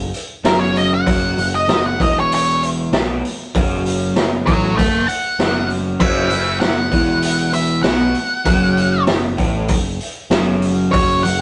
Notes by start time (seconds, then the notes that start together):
Already playing: F#1
0.14 open hi-hat
0.44 F#1 F#2 F#3 A#4, snare, open hi-hat
0.59 C#5
0.76 D#5, open hi-hat
0.94 F#5
1.06 F#1 F#2 F#3, kick, open hi-hat
1.37 F#1 F#2, open hi-hat
1.55 D#5
1.67 F#1 F#2, snare, open hi-hat
1.86 F#5
1.99 E1 E2 E3 D#5, kick, open hi-hat
2.20 C#5
2.32 C#5, open hi-hat
2.63 open hi-hat
2.92 B1 B2 B3, snare, open hi-hat
3.23 muted overdriven electric guitar stroke, open hi-hat
3.54 F#1 F#2 F#3, kick, open hi-hat
3.86 open hi-hat
4.16 F#1 F#2, snare, open hi-hat
4.46 A1 A2 A3 C#5 F#5, kick, open hi-hat
4.77 F#1 F#2 E5 A5, kick, open hi-hat
5.08 F#5, open hi-hat
5.39 F#1 F#2 F#3, snare, open hi-hat
5.70 open hi-hat
6.00 F#1 F#2 F#3 E5, kick, crash
6.30 F#1 F#2, open hi-hat
6.60 F#1 F#2 F#5, snare, open hi-hat
6.92 E1 E2 E3, kick, open hi-hat
7.22 open hi-hat
7.53 E5, open hi-hat
7.83 B1 B2 B3 F#5, snare, open hi-hat
8.14 muted overdriven electric guitar stroke, open hi-hat
8.45 F#1 F#2 F#3, kick, open hi-hat
8.77 open hi-hat
9.07 F#1 F#2, snare, open hi-hat
9.38 A1 A2 A3, kick, open hi-hat
9.68 F#1 F#2, kick, open hi-hat
10.00 open hi-hat
10.30 F#1 F#2 F#3, snare, open hi-hat
10.62 open hi-hat
10.92 F#1 F#2 F#3 C#5, kick, open hi-hat
11.23 F#1 F#2 F#5, open hi-hat